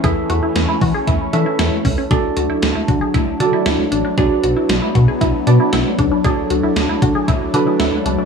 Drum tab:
HH |xxxoxxxo|xxxxxxxx|xxxxxxxx|xxxxxxxx|
SD |--o---o-|--o---o-|--o---o-|--o---o-|
BD |o--oo--o|o--oo---|o--oo--o|o--oo---|